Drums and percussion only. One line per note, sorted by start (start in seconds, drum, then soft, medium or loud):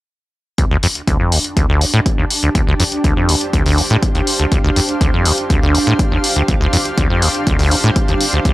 0.58 kick loud
0.58 closed hi-hat medium
0.83 open hi-hat loud
0.95 closed hi-hat medium
1.08 kick loud
1.08 closed hi-hat medium
1.32 open hi-hat loud
1.44 closed hi-hat medium
1.57 kick loud
1.57 closed hi-hat medium
1.81 open hi-hat loud
1.94 closed hi-hat soft
2.06 kick loud
2.06 closed hi-hat medium
2.30 open hi-hat loud
2.55 kick loud
2.55 closed hi-hat medium
2.80 open hi-hat loud
2.92 closed hi-hat soft
3.04 kick loud
3.04 closed hi-hat medium
3.29 open hi-hat loud
3.41 closed hi-hat soft
3.53 kick loud
3.53 closed hi-hat medium
3.66 open hi-hat medium
3.78 open hi-hat loud
3.90 closed hi-hat soft
4.03 kick loud
4.03 closed hi-hat medium
4.15 closed hi-hat soft
4.27 open hi-hat loud
4.40 closed hi-hat soft
4.52 kick loud
4.52 closed hi-hat medium
4.76 open hi-hat loud
4.89 closed hi-hat soft
5.01 kick loud
5.01 closed hi-hat medium
5.25 open hi-hat loud
5.38 closed hi-hat soft
5.50 kick loud
5.50 closed hi-hat medium
5.75 open hi-hat loud
5.87 closed hi-hat soft
5.99 kick loud
5.99 closed hi-hat medium
6.24 open hi-hat loud
6.36 closed hi-hat soft
6.48 kick loud
6.48 closed hi-hat medium
6.73 open hi-hat loud
6.85 closed hi-hat soft
6.98 kick loud
6.98 closed hi-hat medium
7.22 open hi-hat loud
7.35 closed hi-hat soft
7.47 kick loud
7.47 closed hi-hat medium
7.59 open hi-hat medium
7.71 open hi-hat loud
7.96 kick loud
7.96 closed hi-hat medium
8.08 closed hi-hat soft
8.21 open hi-hat loud
8.33 closed hi-hat soft
8.45 kick loud
8.45 closed hi-hat medium